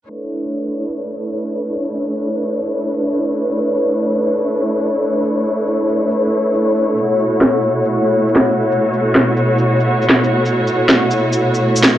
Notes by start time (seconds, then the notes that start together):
0.09 A3 D4 E4 B4 C#5
0.23 shaker
0.45 shaker
0.67 shaker
0.89 shaker
1.11 shaker
1.32 shaker
1.76 shaker
1.97 shaker
2.19 shaker
2.41 shaker
2.62 shaker
2.84 shaker
3.06 shaker
3.27 shaker
3.49 shaker
3.71 shaker
3.93 shaker
4.15 shaker
4.37 shaker
4.58 shaker
4.80 shaker
5.24 shaker
5.45 shaker
5.67 shaker
5.89 shaker
6.11 shaker
6.33 shaker
6.54 shaker
6.76 shaker
6.97 shaker
7.05 B2 F#4
7.19 shaker
7.41 snare, shaker
7.63 shaker
7.85 shaker
8.07 shaker
8.28 shaker
8.36 snare
8.72 shaker
8.93 shaker
9.15 snare, shaker
9.37 shaker
9.58 shaker
9.80 shaker
10.02 shaker
10.09 snare
10.24 shaker
10.45 shaker
10.67 shaker
10.89 snare, shaker
11.11 shaker
11.33 shaker
11.54 shaker
11.76 shaker
11.83 snare